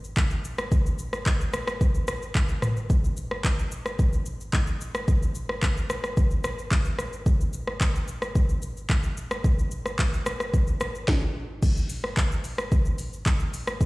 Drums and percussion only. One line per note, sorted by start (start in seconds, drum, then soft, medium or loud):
0.04 shaker medium
0.16 kick loud
0.16 clap medium
0.16 shaker medium
0.30 shaker soft
0.45 shaker medium
0.58 cross-stick loud
0.58 shaker soft
0.72 kick loud
0.72 shaker medium
0.86 shaker medium
0.99 shaker medium
1.13 cross-stick medium
1.13 shaker soft
1.26 kick medium
1.26 clap medium
1.26 shaker medium
1.41 shaker medium
1.53 cross-stick loud
1.53 shaker medium
1.67 cross-stick loud
1.67 shaker soft
1.81 kick loud
1.81 shaker medium
1.94 shaker medium
2.08 cross-stick loud
2.08 shaker loud
2.22 shaker medium
2.35 kick loud
2.35 clap medium
2.35 shaker medium
2.49 shaker medium
2.62 cross-stick medium
2.62 mid tom medium
2.62 shaker medium
2.77 shaker soft
2.90 kick loud
2.90 shaker medium
3.04 shaker medium
3.17 shaker medium
3.31 cross-stick medium
3.44 kick medium
3.44 clap medium
3.44 shaker medium
3.59 shaker medium
3.72 shaker medium
3.86 cross-stick medium
3.86 shaker soft
3.99 kick loud
3.99 shaker medium
4.13 shaker medium
4.26 shaker medium
4.40 shaker medium
4.53 kick loud
4.53 clap medium
4.53 shaker medium
4.67 shaker medium
4.81 shaker medium
4.95 cross-stick loud
4.95 shaker medium
5.08 kick loud
5.08 shaker medium
5.22 shaker medium
5.35 shaker loud
5.49 cross-stick medium
5.62 kick medium
5.62 clap medium
5.62 shaker medium
5.77 shaker medium
5.90 cross-stick loud
5.90 shaker medium
6.04 cross-stick medium
6.04 shaker soft
6.17 kick loud
6.17 shaker medium
6.31 shaker medium
6.44 cross-stick loud
6.44 shaker medium
6.59 shaker medium
6.71 kick loud
6.71 clap medium
6.71 shaker medium
6.85 shaker medium
6.99 cross-stick medium
6.99 shaker loud
7.13 shaker medium
7.26 kick loud
7.26 shaker medium
7.41 shaker medium
7.53 shaker loud
7.67 cross-stick medium
7.80 kick loud
7.80 clap loud
7.80 shaker medium
7.95 shaker medium
8.08 shaker medium
8.22 cross-stick medium
8.22 shaker soft
8.35 kick loud
8.35 shaker medium
8.49 shaker medium
8.62 shaker medium
8.77 shaker medium
8.89 kick loud
8.89 clap medium
8.89 shaker medium
9.03 shaker medium
9.17 shaker medium
9.31 cross-stick loud
9.31 shaker soft
9.44 kick loud
9.44 shaker medium
9.59 shaker medium
9.71 shaker medium
9.86 cross-stick medium
9.86 shaker soft
9.98 kick medium
9.98 clap medium
9.98 shaker medium
10.14 shaker medium
10.26 cross-stick loud
10.26 shaker medium
10.40 cross-stick medium
10.40 shaker soft
10.54 kick loud
10.54 shaker medium
10.67 shaker soft
10.80 cross-stick loud
10.80 shaker loud
10.95 shaker medium
11.08 kick loud
11.08 snare medium
11.62 kick loud
11.62 crash loud
11.62 shaker medium
11.77 shaker medium
11.89 open hi-hat medium
11.89 shaker loud
12.04 cross-stick medium
12.17 kick loud
12.17 clap medium
12.17 shaker medium
12.32 shaker medium
12.44 open hi-hat medium
12.44 shaker medium
12.58 cross-stick loud
12.58 shaker soft
12.72 kick loud
12.72 shaker medium
12.85 shaker medium
12.98 open hi-hat medium
12.98 shaker loud
13.13 shaker medium
13.25 kick loud
13.25 clap loud
13.25 shaker medium
13.40 shaker medium
13.54 open hi-hat medium
13.54 shaker medium
13.67 cross-stick loud
13.67 shaker medium
13.81 kick loud
13.81 shaker medium